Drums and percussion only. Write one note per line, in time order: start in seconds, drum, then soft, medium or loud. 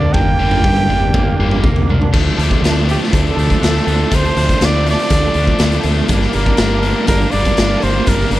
0.14 kick loud
0.14 floor tom medium
0.51 floor tom medium
0.64 kick loud
0.77 floor tom medium
1.14 kick loud
1.14 floor tom medium
1.51 floor tom medium
1.64 kick loud
1.76 floor tom medium
1.90 mid tom medium
2.02 mid tom medium
2.14 kick loud
2.14 crash loud
2.39 closed hi-hat medium
2.51 kick medium
2.64 snare loud
2.64 closed hi-hat loud
2.89 closed hi-hat medium
3.03 snare soft
3.13 kick loud
3.13 closed hi-hat loud
3.27 closed hi-hat soft
3.38 closed hi-hat medium
3.50 kick medium
3.50 closed hi-hat soft
3.63 snare loud
3.63 closed hi-hat loud
3.77 snare soft
3.88 closed hi-hat medium
4.11 kick loud
4.11 closed hi-hat loud
4.25 closed hi-hat soft
4.37 closed hi-hat medium
4.49 kick medium
4.49 closed hi-hat medium
4.61 snare loud
4.61 closed hi-hat loud
4.86 closed hi-hat medium
4.99 closed hi-hat soft
5.10 kick loud
5.10 closed hi-hat loud
5.34 closed hi-hat medium
5.47 kick medium
5.59 snare loud
5.59 closed hi-hat loud
5.72 closed hi-hat medium
5.83 closed hi-hat medium
6.08 kick loud
6.08 closed hi-hat loud
6.21 snare soft
6.33 closed hi-hat medium
6.46 kick medium
6.57 snare loud
6.57 closed hi-hat loud
6.83 closed hi-hat medium
7.07 kick loud
7.07 closed hi-hat loud
7.20 closed hi-hat soft
7.32 closed hi-hat medium
7.45 kick medium
7.45 closed hi-hat soft
7.57 snare loud
7.57 closed hi-hat loud
7.82 closed hi-hat medium
8.07 kick loud
8.07 closed hi-hat medium
8.19 snare soft
8.19 closed hi-hat soft
8.31 closed hi-hat medium